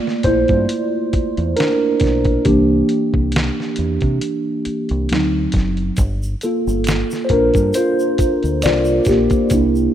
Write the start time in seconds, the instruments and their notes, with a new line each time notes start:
Already playing: tine electric piano A3 A#3 F4 D5
0.07 snare
0.23 fingered electric bass A#1, tine electric piano E4 C5, kick, closed hi-hat
0.48 fingered electric bass G2, kick, closed hi-hat
0.69 closed hi-hat
1.13 muted fingered electric bass stroke, kick, closed hi-hat
1.37 fingered electric bass E2, closed hi-hat
1.56 tine electric piano D4 A#4, snare, closed hi-hat
2.00 fingered electric bass B1, kick, closed hi-hat
2.04 snare
2.25 kick, closed hi-hat
2.45 fingered electric bass C2, tine electric piano E3 A#3 D4 G4, kick, closed hi-hat
2.89 closed hi-hat
3.14 fingered electric bass C2, kick
3.32 closed hi-hat
3.36 snare
3.60 snare
3.76 fingered electric bass E2, closed hi-hat
4.01 fingered electric bass C3, kick, closed hi-hat
4.21 closed hi-hat
4.65 muted fingered electric bass stroke, closed hi-hat
4.89 fingered electric bass C2, closed hi-hat
5.09 fingered electric bass D2, tine electric piano F#3 C4 D#4, snare, closed hi-hat
5.52 fingered electric bass F#1, kick, closed hi-hat
5.56 snare
5.77 closed hi-hat
5.97 fingered electric bass G1, kick, closed hi-hat, shaker
6.23 shaker
6.41 tine electric piano A#3 F4 A4, closed hi-hat, shaker
6.67 fingered electric bass G1, shaker
6.84 finger snap, closed hi-hat, shaker
6.89 snare
7.11 snare, shaker
7.25 tine electric piano C5
7.29 fingered electric bass A#1, tine electric piano A#4, kick, closed hi-hat
7.33 tine electric piano D4
7.54 fingered electric bass G2, kick, closed hi-hat, shaker
7.74 tine electric piano F4 C5, closed hi-hat, shaker
8.00 shaker
8.18 muted fingered electric bass stroke, kick, closed hi-hat, shaker
8.43 fingered electric bass D2, closed hi-hat, shaker
8.62 fingered electric bass C2, tine electric piano F4 D5, finger snap, snare, closed hi-hat, shaker
8.85 shaker
9.05 fingered electric bass A#1, tine electric piano G4, kick, closed hi-hat, shaker
9.09 tine electric piano A#3, snare
9.30 kick, closed hi-hat, shaker
9.50 fingered electric bass C2, tine electric piano A#3 D4 E4, kick, closed hi-hat, shaker
9.76 shaker